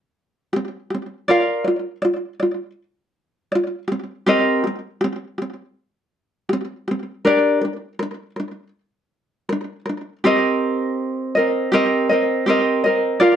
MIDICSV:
0, 0, Header, 1, 2, 480
1, 0, Start_track
1, 0, Key_signature, -3, "minor"
1, 0, Tempo, 745342
1, 827, Time_signature, 4, 2, 24, 8
1, 8604, End_track
2, 0, Start_track
2, 0, Title_t, "Ukulele"
2, 0, Program_c, 0, 24
2, 341, Note_on_c, 0, 67, 59
2, 363, Note_on_c, 0, 60, 63
2, 536, Note_off_c, 0, 67, 0
2, 547, Note_off_c, 0, 60, 0
2, 582, Note_on_c, 0, 67, 46
2, 608, Note_on_c, 0, 60, 55
2, 777, Note_off_c, 0, 67, 0
2, 790, Note_off_c, 0, 60, 0
2, 825, Note_on_c, 0, 74, 64
2, 831, Note_on_c, 0, 65, 64
2, 836, Note_on_c, 0, 70, 68
2, 843, Note_on_c, 0, 77, 68
2, 1051, Note_off_c, 0, 74, 0
2, 1056, Note_off_c, 0, 77, 0
2, 1059, Note_on_c, 0, 74, 47
2, 1069, Note_off_c, 0, 65, 0
2, 1072, Note_off_c, 0, 70, 0
2, 1079, Note_on_c, 0, 65, 55
2, 1255, Note_off_c, 0, 74, 0
2, 1265, Note_off_c, 0, 65, 0
2, 1300, Note_on_c, 0, 74, 64
2, 1318, Note_on_c, 0, 65, 66
2, 1496, Note_off_c, 0, 74, 0
2, 1505, Note_off_c, 0, 65, 0
2, 1543, Note_on_c, 0, 74, 43
2, 1562, Note_on_c, 0, 65, 56
2, 1737, Note_off_c, 0, 74, 0
2, 1747, Note_off_c, 0, 65, 0
2, 2265, Note_on_c, 0, 74, 61
2, 2287, Note_on_c, 0, 65, 70
2, 2459, Note_off_c, 0, 74, 0
2, 2470, Note_off_c, 0, 65, 0
2, 2496, Note_on_c, 0, 67, 50
2, 2523, Note_on_c, 0, 60, 56
2, 2695, Note_off_c, 0, 67, 0
2, 2708, Note_off_c, 0, 60, 0
2, 2746, Note_on_c, 0, 67, 68
2, 2752, Note_on_c, 0, 60, 72
2, 2757, Note_on_c, 0, 70, 80
2, 2762, Note_on_c, 0, 75, 70
2, 2978, Note_off_c, 0, 67, 0
2, 2986, Note_on_c, 0, 67, 50
2, 2991, Note_off_c, 0, 60, 0
2, 2993, Note_off_c, 0, 70, 0
2, 2996, Note_off_c, 0, 75, 0
2, 3008, Note_on_c, 0, 60, 57
2, 3180, Note_off_c, 0, 67, 0
2, 3191, Note_off_c, 0, 60, 0
2, 3225, Note_on_c, 0, 67, 66
2, 3247, Note_on_c, 0, 60, 74
2, 3420, Note_off_c, 0, 67, 0
2, 3431, Note_off_c, 0, 60, 0
2, 3465, Note_on_c, 0, 67, 42
2, 3489, Note_on_c, 0, 60, 53
2, 3660, Note_off_c, 0, 67, 0
2, 3672, Note_off_c, 0, 60, 0
2, 4180, Note_on_c, 0, 67, 60
2, 4205, Note_on_c, 0, 60, 76
2, 4378, Note_off_c, 0, 67, 0
2, 4391, Note_off_c, 0, 60, 0
2, 4429, Note_on_c, 0, 67, 50
2, 4451, Note_on_c, 0, 60, 53
2, 4623, Note_off_c, 0, 67, 0
2, 4634, Note_off_c, 0, 60, 0
2, 4667, Note_on_c, 0, 70, 67
2, 4670, Note_on_c, 0, 62, 68
2, 4679, Note_on_c, 0, 67, 62
2, 4682, Note_on_c, 0, 74, 84
2, 4896, Note_off_c, 0, 70, 0
2, 4901, Note_off_c, 0, 74, 0
2, 4903, Note_on_c, 0, 70, 49
2, 4912, Note_off_c, 0, 62, 0
2, 4916, Note_off_c, 0, 67, 0
2, 4925, Note_on_c, 0, 62, 52
2, 5100, Note_off_c, 0, 70, 0
2, 5111, Note_off_c, 0, 62, 0
2, 5147, Note_on_c, 0, 70, 64
2, 5169, Note_on_c, 0, 62, 63
2, 5342, Note_off_c, 0, 70, 0
2, 5353, Note_off_c, 0, 62, 0
2, 5385, Note_on_c, 0, 70, 37
2, 5408, Note_on_c, 0, 62, 46
2, 5581, Note_off_c, 0, 70, 0
2, 5592, Note_off_c, 0, 62, 0
2, 6112, Note_on_c, 0, 70, 59
2, 6134, Note_on_c, 0, 62, 62
2, 6304, Note_off_c, 0, 70, 0
2, 6315, Note_off_c, 0, 62, 0
2, 6347, Note_on_c, 0, 70, 46
2, 6372, Note_on_c, 0, 62, 46
2, 6541, Note_off_c, 0, 70, 0
2, 6554, Note_off_c, 0, 62, 0
2, 6594, Note_on_c, 0, 67, 68
2, 6600, Note_on_c, 0, 60, 91
2, 6607, Note_on_c, 0, 70, 77
2, 6611, Note_on_c, 0, 75, 85
2, 7302, Note_off_c, 0, 75, 0
2, 7309, Note_on_c, 0, 75, 58
2, 7311, Note_off_c, 0, 67, 0
2, 7314, Note_off_c, 0, 60, 0
2, 7320, Note_off_c, 0, 70, 0
2, 7322, Note_on_c, 0, 70, 53
2, 7333, Note_on_c, 0, 60, 49
2, 7546, Note_on_c, 0, 67, 76
2, 7548, Note_off_c, 0, 60, 0
2, 7549, Note_off_c, 0, 75, 0
2, 7550, Note_off_c, 0, 70, 0
2, 7556, Note_on_c, 0, 60, 86
2, 7558, Note_on_c, 0, 70, 92
2, 7566, Note_on_c, 0, 75, 78
2, 7781, Note_off_c, 0, 75, 0
2, 7787, Note_off_c, 0, 67, 0
2, 7788, Note_on_c, 0, 75, 60
2, 7790, Note_off_c, 0, 70, 0
2, 7792, Note_off_c, 0, 60, 0
2, 7798, Note_on_c, 0, 70, 52
2, 7809, Note_on_c, 0, 60, 59
2, 8025, Note_on_c, 0, 67, 57
2, 8026, Note_off_c, 0, 60, 0
2, 8027, Note_off_c, 0, 75, 0
2, 8032, Note_off_c, 0, 70, 0
2, 8034, Note_on_c, 0, 60, 76
2, 8043, Note_on_c, 0, 70, 77
2, 8050, Note_on_c, 0, 75, 72
2, 8260, Note_off_c, 0, 75, 0
2, 8265, Note_off_c, 0, 67, 0
2, 8268, Note_on_c, 0, 75, 57
2, 8270, Note_off_c, 0, 60, 0
2, 8272, Note_off_c, 0, 70, 0
2, 8280, Note_on_c, 0, 70, 45
2, 8289, Note_on_c, 0, 60, 42
2, 8499, Note_on_c, 0, 74, 77
2, 8502, Note_off_c, 0, 70, 0
2, 8503, Note_off_c, 0, 60, 0
2, 8505, Note_on_c, 0, 65, 81
2, 8506, Note_off_c, 0, 75, 0
2, 8510, Note_on_c, 0, 70, 75
2, 8516, Note_on_c, 0, 77, 85
2, 8604, Note_off_c, 0, 65, 0
2, 8604, Note_off_c, 0, 70, 0
2, 8604, Note_off_c, 0, 74, 0
2, 8604, Note_off_c, 0, 77, 0
2, 8604, End_track
0, 0, End_of_file